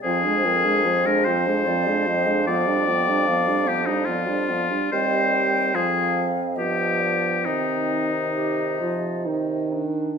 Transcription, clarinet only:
X:1
M:3/4
L:1/16
Q:1/4=73
K:Cm
V:1 name="Clarinet"
C D C D C D C D C D C D | =B, D B, D B, D B, D B, D B, D | C4 C4 =B,4 | C4 G2 F2 E2 D2 |]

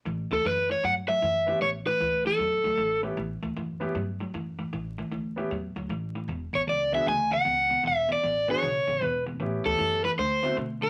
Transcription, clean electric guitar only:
X:1
M:4/4
L:1/8
Q:"Swing" 1/4=154
K:Amix
V:1 name="Clean electric guitar" clef=bass
[A,,E,] [A,,E,] [A,,E,] [A,,E,] [A,,F,] [A,,F,] [A,,E,] [A,,E,] | [A,,E,] [A,,E,] [A,,E,] [A,,E,] [A,,F,] [A,,F,] [A,,E,] [A,,E,] | [A,,E,] [A,,E,] [A,,E,] [A,,E,] [A,,F,] [A,,F,] [A,,E,] [A,,E,] | [A,,E,] [A,,E,] [A,,E,] [A,,E,] [A,,F,] [A,,F,] [A,,E,] [A,,E,] |
[E,,B,,] [E,,B,,] [E,,B,,] [E,,B,,] [E,,C,] [E,,C,] [E,,B,,] [E,,B,,] | [E,,B,,] [E,,B,,] [E,,B,,] [E,,B,,] [E,,C,] [E,,C,] [E,,B,,] [E,,B,,] | [A,,E,] [A,,E,] [A,,E,] [A,,E,] [D,A,] [D,B,] [D,A,] [D,A,] |]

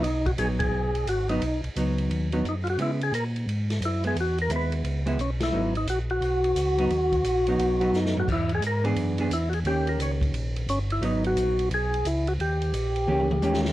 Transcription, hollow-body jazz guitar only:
X:1
M:4/4
L:1/8
Q:"Swing" 1/4=175
K:G#m
V:1 name="Hollow-body jazz guitar"
z2 [F,B,D]3 z2 [F,B,D] | z2 [F,B,D]3 [F,B,D] z2 | [G,B,E] z6 [G,B,E] | z2 [G,B,E]3 [G,B,E] z2 |
[F,B,D] z6 [F,B,D] | z3 [F,B,D]2 [F,B,D]3 | z3 [E,B,=DG]2 [E,B,DG] z2 | [D,A,C=G]4- [D,A,CG] z3 |
[F,B,D]4- [F,B,D] z3 | z4 [D,A,C=G] z [D,A,CG]2 |]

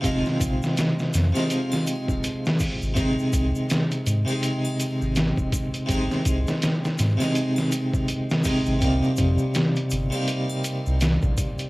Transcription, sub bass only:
X:1
M:4/4
L:1/16
Q:"Swing 16ths" 1/4=82
K:Ab
V:1 name="Sub bass" clef=bass
F,,, z B,,, z3 F,, z4 E,,, z3 A,,, | A,,, z C,, z3 A,, z4 A,,,2 E,,, z2 | A,,, z C,, z3 A,, z8 A,,, | C,, z F,, z3 G,,, z4 C,,2 B,,, z2 |]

